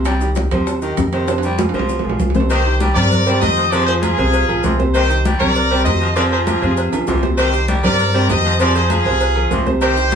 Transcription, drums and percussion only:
0.05 high bongo medium
0.05 high conga soft
0.05 high timbale medium
0.05 maracas medium
0.21 high bongo soft
0.21 high conga soft
0.21 maracas medium
0.35 high bongo medium
0.35 high conga medium
0.35 high timbale medium
0.35 low timbale medium
0.35 maracas medium
0.51 high bongo soft
0.51 high conga soft
0.51 low conga medium
0.51 high timbale medium
0.51 maracas soft
0.67 high bongo medium
0.67 high conga soft
0.67 maracas medium
0.82 high bongo soft
0.82 high conga soft
0.82 maracas medium
0.97 high bongo soft
0.97 low bongo medium
0.97 high conga medium
0.97 high timbale medium
0.97 low timbale medium
0.97 maracas medium
1.12 high conga soft
1.12 high timbale medium
1.12 maracas soft
1.28 high bongo medium
1.28 high conga soft
1.28 high timbale medium
1.28 maracas medium
1.38 high timbale medium
1.43 high bongo soft
1.43 high conga soft
1.43 maracas medium
1.58 high bongo medium
1.58 high conga medium
1.58 low timbale medium
1.58 maracas medium
1.69 high timbale medium
1.73 high bongo medium
1.73 high conga soft
1.73 maracas soft
1.79 low timbale medium
1.89 high bongo medium
1.89 high conga soft
1.89 maracas medium
1.99 low timbale medium
2.05 high conga soft
2.10 low timbale loud
2.19 high conga medium
2.19 low timbale medium
2.19 maracas medium
2.30 low timbale medium
2.35 low bongo medium
2.35 high conga medium
2.35 maracas soft
2.40 low timbale medium
2.50 cowbell loud
2.50 high conga soft
2.50 low agogo loud
2.50 maracas medium
2.65 high conga soft
2.80 cowbell medium
2.80 high conga medium
2.80 low timbale medium
2.80 low agogo medium
2.80 maracas medium
2.96 cowbell medium
2.96 high conga soft
2.96 low conga medium
2.96 low agogo loud
2.96 maracas soft
3.11 cowbell loud
3.11 high conga soft
3.11 low conga medium
3.11 maracas medium
3.27 low agogo medium
3.27 maracas medium
3.41 cowbell medium
3.41 high conga medium
3.41 low timbale medium
3.41 low agogo loud
3.41 maracas medium
3.57 cowbell medium
3.57 high conga soft
3.57 maracas soft
3.72 cowbell loud
3.72 high conga soft
3.72 low agogo medium
3.72 maracas medium
3.88 high conga soft
3.88 low agogo medium
4.03 cowbell medium
4.03 high conga loud
4.03 low timbale medium
4.03 low agogo loud
4.03 maracas medium
4.18 cowbell medium
4.18 high conga soft
4.18 maracas soft
4.33 cowbell loud
4.33 high conga soft
4.33 low agogo medium
4.33 maracas medium
4.49 high conga soft
4.49 low agogo loud
4.63 cowbell medium
4.63 high conga medium
4.63 low timbale medium
4.63 maracas medium
4.79 high conga medium
4.79 maracas soft
4.94 cowbell loud
4.94 low agogo loud
4.94 maracas medium
5.10 high conga soft
5.10 maracas medium
5.25 cowbell medium
5.25 high conga loud
5.25 low timbale medium
5.25 low agogo medium
5.25 maracas medium
5.40 cowbell medium
5.40 high conga soft
5.40 low conga medium
5.40 low agogo loud
5.40 maracas soft
5.55 cowbell loud
5.55 high conga soft
5.55 maracas medium
5.71 high conga soft
5.71 low agogo medium
5.86 cowbell medium
5.86 high conga medium
5.86 low timbale medium
5.86 low agogo loud
5.86 maracas medium
6.01 cowbell medium
6.01 high conga soft
6.01 maracas soft
6.16 cowbell loud
6.16 high conga soft
6.16 low agogo medium
6.16 maracas medium
6.32 high conga soft
6.32 low agogo medium
6.47 cowbell medium
6.47 high conga loud
6.47 low timbale medium
6.47 low agogo loud
6.47 maracas medium
6.62 cowbell medium
6.62 high conga soft
6.62 maracas soft
6.77 cowbell loud
6.77 high conga soft
6.77 low agogo medium
6.77 maracas medium
6.93 high conga soft
6.93 high timbale medium
6.93 low agogo loud
6.93 maracas medium
7.07 cowbell medium
7.07 high conga medium
7.07 low timbale medium
7.07 maracas medium
7.22 high conga medium
7.22 low timbale medium
7.22 maracas soft
7.38 cowbell loud
7.38 low agogo loud
7.38 maracas medium
7.53 high conga soft
7.53 maracas medium
7.68 cowbell medium
7.68 high conga loud
7.68 low timbale medium
7.68 low agogo medium
7.68 maracas medium
7.83 cowbell medium
7.83 high conga soft
7.83 low conga medium
7.83 low agogo loud
7.83 maracas soft
7.99 cowbell loud
7.99 high conga soft
7.99 maracas medium
8.14 high conga soft
8.14 low agogo medium
8.29 cowbell medium
8.29 high conga medium
8.29 low timbale medium
8.29 low agogo loud
8.29 maracas medium
8.44 cowbell medium
8.44 high conga soft
8.44 maracas soft
8.59 cowbell loud
8.59 high conga soft
8.59 low agogo medium
8.59 maracas medium
8.75 high conga soft
8.75 low agogo medium
8.75 maracas medium
8.90 cowbell medium
8.90 high conga medium
8.90 low timbale medium
8.90 low agogo loud
8.90 maracas medium
9.05 cowbell medium
9.05 high conga soft
9.05 maracas soft
9.20 cowbell loud
9.20 high conga soft
9.20 low agogo medium
9.20 maracas medium
9.36 high conga soft
9.36 low agogo loud
9.51 cowbell medium
9.51 high conga medium
9.51 low timbale medium
9.51 maracas medium
9.66 high conga medium
9.66 maracas soft
9.81 cowbell loud
9.81 high conga soft
9.81 low agogo loud
9.81 maracas medium
9.97 high conga soft
9.97 maracas medium
10.11 maracas medium

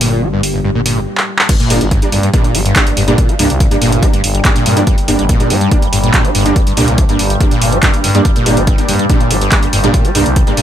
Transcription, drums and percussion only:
0.01 open hi-hat loud
0.43 open hi-hat loud
0.86 open hi-hat loud
1.18 clap medium
1.39 clap medium
1.49 kick loud
1.49 closed hi-hat loud
1.49 crash loud
1.60 closed hi-hat medium
1.70 open hi-hat loud
1.81 closed hi-hat medium
1.91 kick loud
1.91 closed hi-hat loud
2.02 closed hi-hat medium
2.12 open hi-hat medium
2.23 closed hi-hat medium
2.34 kick loud
2.34 closed hi-hat medium
2.44 closed hi-hat medium
2.55 open hi-hat loud
2.66 closed hi-hat medium
2.76 kick loud
2.76 clap loud
2.76 closed hi-hat medium
2.87 closed hi-hat medium
2.97 open hi-hat loud
3.08 closed hi-hat medium
3.18 kick loud
3.18 closed hi-hat loud
3.29 closed hi-hat medium
3.39 open hi-hat loud
3.50 closed hi-hat medium
3.60 kick loud
3.60 closed hi-hat loud
3.71 closed hi-hat medium
3.82 open hi-hat loud
3.92 closed hi-hat medium
4.03 kick loud
4.03 closed hi-hat loud
4.14 closed hi-hat medium
4.24 open hi-hat loud
4.35 closed hi-hat medium
4.45 kick loud
4.45 clap loud
4.45 closed hi-hat loud
4.56 closed hi-hat medium
4.66 open hi-hat loud
4.77 closed hi-hat medium
4.87 kick loud
4.87 closed hi-hat medium
4.98 closed hi-hat medium
5.08 open hi-hat loud
5.19 closed hi-hat medium
5.29 kick loud
5.29 closed hi-hat loud
5.40 closed hi-hat medium
5.50 open hi-hat loud
5.61 closed hi-hat medium
5.71 kick loud
5.71 closed hi-hat loud
5.82 closed hi-hat medium
5.93 open hi-hat loud
6.04 closed hi-hat medium
6.14 kick loud
6.14 clap loud
6.14 closed hi-hat medium
6.25 closed hi-hat medium
6.35 open hi-hat loud
6.46 closed hi-hat medium
6.56 kick loud
6.56 closed hi-hat medium
6.67 closed hi-hat medium
6.77 open hi-hat loud
6.88 closed hi-hat medium
6.98 kick loud
6.98 closed hi-hat medium
7.09 closed hi-hat medium
7.19 open hi-hat loud
7.30 closed hi-hat medium
7.41 kick loud
7.41 closed hi-hat medium
7.51 closed hi-hat medium
7.62 open hi-hat loud
7.72 closed hi-hat medium
7.83 kick loud
7.83 clap loud
7.83 closed hi-hat medium
7.94 closed hi-hat medium
8.04 open hi-hat loud
8.15 closed hi-hat medium
8.25 kick loud
8.25 closed hi-hat medium
8.36 closed hi-hat medium
8.46 open hi-hat loud
8.57 closed hi-hat medium
8.67 kick loud
8.67 closed hi-hat medium
8.78 closed hi-hat medium
8.89 open hi-hat loud
8.99 closed hi-hat medium
9.10 kick loud
9.10 closed hi-hat medium
9.20 closed hi-hat medium
9.31 open hi-hat loud
9.41 closed hi-hat medium
9.52 kick loud
9.52 clap loud
9.52 closed hi-hat medium
9.63 closed hi-hat medium
9.73 open hi-hat loud
9.84 closed hi-hat medium
9.94 kick loud
9.94 closed hi-hat medium
10.05 closed hi-hat soft
10.15 open hi-hat loud
10.26 closed hi-hat medium
10.36 kick loud
10.36 closed hi-hat medium
10.47 closed hi-hat medium
10.57 open hi-hat medium

